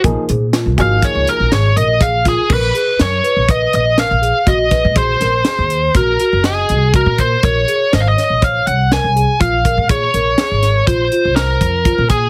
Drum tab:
CC |----------|x---------|----------|----------|
HH |xxxxxxxxxx|-xxxxxxxxx|xxxxxxxxxx|xxxxxxxxxx|
SD |--o---o--o|--o---o--o|-oo---o---|--oo--o---|
BD |o--oo---oo|o---o---oo|o---o---oo|o---o---oo|

CC |----------|
HH |xxxxxxxxxx|
SD |--oo--o---|
BD |o---o--ooo|